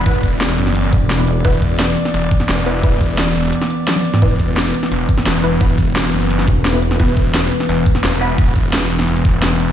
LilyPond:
<<
  \new Staff \with { instrumentName = "Synth drone" } { \time 4/4 \key c \lydian \tempo 4 = 173 << { d''1~ | d''1~ | d''1 | b'1~ |
b'1~ | b'1~ | b'1 | } \\ { <e b>1~ | <e b>1~ | <e b>1~ | <e b>1~ |
<e b>1~ | <e b>1~ | <e b>1 | } >> }
  \new Staff \with { instrumentName = "Synth stab" } { \time 4/4 \key c \lydian <b e' b'>16 r2. <b e' b'>8 r16 | <b e' b'>8 r2. <b e' b'>8 | <b e' b'>16 r2. r8. | <b e' b'>8 r2. <b e' b'>8 |
<b e' b'>16 r2. <b e' b'>8 r16 | <b e' b'>8 r2. <b e' b'>8 | r1 | }
  \new Staff \with { instrumentName = "Detuned saw bass" } { \clef bass \time 4/4 \key c \lydian e,,4. fis,,4 r4. | e,,4. r8 e,,8 r8 e,,4~ | e,,4. e,,8 r2 | e,,4. r8 e,,8 r8 e,,4~ |
e,,4. fis,,4 r4. | e,,4. r8 e,,8 r8 e,,4~ | e,,4. e,,8 e,,8 e,,4. | }
  \new Staff \with { instrumentName = "Wobble bass" } { \clef bass \time 4/4 \key c \lydian r2 r8 e,,4. | r1 | r1 | r1 |
r2 r8 e,,4. | r1 | r1 | }
  \new DrumStaff \with { instrumentName = "Drums" } \drummode { \time 4/4 <hh bd>16 hh16 <hh bd>8 <hh sn>16 sn16 hh16 <hh sn>16 hh16 hh16 <hh bd>8 <hh sn>16 sn16 hh8 | <hh bd>16 hh16 <hh bd>8 <hh sn>8 hh16 <hh sn>16 hh8 <hh bd>16 sn16 <hh sn>8 hh8 | <hh bd>16 hh16 <hh bd>8 <hh sn>16 sn16 hh16 hh16 hh16 <hh sn>16 hh8 <hh sn tommh>16 <sn tommh>16 hh16 <sn toml>16 | <hh bd>16 hh16 <hh bd>8 <hh sn>8 hh16 <hh sn>16 hh8 <hh bd>16 sn16 <hh sn>8 hh8 |
<hh bd>16 hh16 <hh bd>8 <hh sn>16 sn16 hh16 hh16 hh16 <hh sn>16 <hh bd>8 <hh sn>16 sn16 hh16 sn16 | <hh bd>16 hh16 <hh bd>8 <hh sn>8 hh16 <hh sn>16 hh8 <hh bd>16 sn16 <hh sn>8 hh8 | <hh bd>16 hh16 <hh bd>8 <hh sn>16 sn16 hh16 <hh sn>16 hh16 hh16 <hh bd>8 <hh sn>16 sn16 hh8 | }
>>